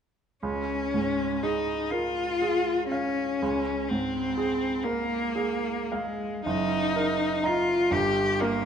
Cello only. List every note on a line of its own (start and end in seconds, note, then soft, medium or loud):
0.44 1.44 C#4 medium
1.43 1.92 D#4 medium
1.90 2.88 F4 medium
2.89 3.90 C#4 medium
3.89 4.85 C4 medium
4.83 5.93 A#3 medium
5.91 6.45 G#3 medium
6.45 7.47 D#4 medium
7.46 7.94 F4 medium
7.93 8.44 G4 medium
8.42 8.65 A#3 medium